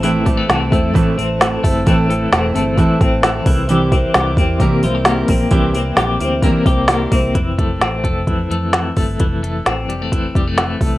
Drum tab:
HH |oooooooo|oooooooo|oooooooo|oooooooo|
SD |--o---o-|--o---o-|--o---o-|--o---o-|
BD |-o-oo--o|o---oo-o|-o-oo--o|o---oo-o|

HH |xxxxxxxo|xxxxxxxo|
SD |--o---o-|--o---o-|
BD |oo-oo--o|o---oo-o|